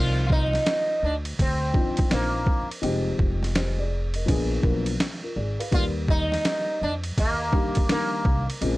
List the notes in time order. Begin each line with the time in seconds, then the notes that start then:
Already playing: C2 F3 C4 D#4 F4 A#4 D5
0.27 F4, kick
0.32 D#4
0.53 snare, ride
0.66 snare, hi-hat pedal, ride
1.03 D2 D4
1.25 ride
1.39 D2 C4, kick, ride
1.73 F3 C4 D4 D#4 F4, kick
1.97 kick, ride
2.10 A#1 F3 A#3 C4 D4 D#4 C5, snare, hi-hat pedal, ride
2.47 kick
2.71 ride
2.82 F1 F3 G#3 C4 D#4 G4, ride
3.19 F1, kick
3.43 snare, ride
3.55 G4 C5, snare, hi-hat pedal, ride
3.79 G#4 D5
4.14 A#4 D#5, ride
4.26 A#1 F3 A#3 B3 D4 G#4, kick, ride
4.62 B1 F3 A#3 B3 D4 A#4, kick
4.86 ride
5.00 snare, hi-hat pedal, ride
5.23 F4 A#4
5.36 G#1 G#4 D5
5.59 B4 F5, ride
5.71 D#2 D#3 G3 A#3 F4 G4 D5, kick, ride
6.08 D#4, kick
6.32 snare, ride
6.45 snare, hi-hat pedal, ride
6.82 F2 D4
7.04 ride
7.18 D#2 A#3, kick, ride
7.52 D#3 G3 A#3 D4 G4, kick
7.75 kick, ride
7.89 D#3 G3 A#3 D4 A#4, snare, hi-hat pedal, ride
8.25 C2, kick
8.50 ride
8.61 A#1 C#3 G#3 A#3 C4 F4, ride